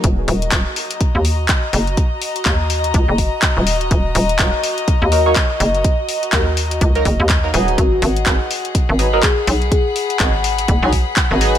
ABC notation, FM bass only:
X:1
M:4/4
L:1/16
Q:"Swing 16ths" 1/4=124
K:Ebm
V:1 name="FM bass" clef=bass
E,,,2 E,,,2 E,,, z4 E,,3 z2 G,,,2 | z4 E,,4 D,, G,,,2 z2 E,,,3 | E,,,2 E,,,2 E,,, z4 E,,3 z2 G,,,2 | z4 E,,4 D,,2 G,,, E,,3 E,,,2 |
A,,,2 A,,,2 A,,, z4 A,,,3 z2 C,,2 | z4 A,,,4 G,,, C,,2 z2 A,,,3 |]